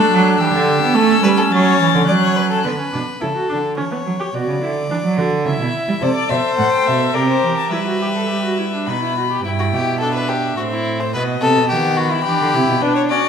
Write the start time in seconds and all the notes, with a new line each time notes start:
Already playing: A3 D4 A4 F#6
0.12 F#3
0.38 E3 G4 E6
0.54 D3
0.81 B3
0.95 A3 C#4 A4
1.23 G3 B4
1.37 A4
1.52 F#3 C#5 A6
1.81 E3
1.94 D3
2.06 F#3 D5 F#6
2.22 C#5
2.36 B4
2.50 A4
2.64 D3 B3 B4
2.78 C#4
2.92 B2 D4
3.21 C#3 E4 A4
3.35 F#4
3.49 D3 D4
3.77 E3 C#4 C#5
3.91 B3
4.06 F#3
4.20 G4
4.34 B2 F#4 D5
4.47 C#3
4.62 D3 E4
4.89 E3 D4
5.04 F#3
5.17 D3 F#4
5.45 C#3 E4 E5
5.60 B2
5.88 G3
6.01 C3 A4 C5 D5
6.15 D5
6.29 B2 C5 E5
6.58 A2 F#5
6.72 G5
6.86 B2 E5
7.14 C3 G4 A#4 D5
7.28 C5
7.43 E3
7.57 A5
7.71 G3 E4 B4 E5
7.86 F#4
8.02 G4
8.16 A4
8.30 G4
8.44 F#4
8.59 E4
8.73 D4
8.86 B2 D#4 B4 B5
9.02 E4
9.17 F#4
9.31 G4
9.44 G2 E4 G5
9.59 F#4
9.73 B2 G4
10.01 D4 A4 E5
10.15 B4
10.29 G4
10.57 A2 C4 F#4
10.71 E4
11.00 C5
11.14 B2 B3 B4 D#5
11.41 C3 A4
11.57 B2
11.69 D#3 B3 G4 F#5
11.96 F#4 B5
12.12 E4
12.24 E3 D4 G4
12.41 D3
12.54 C3 E4
12.68 B2
12.82 D4 B4
12.95 C#5
13.09 C#4 F#4 D5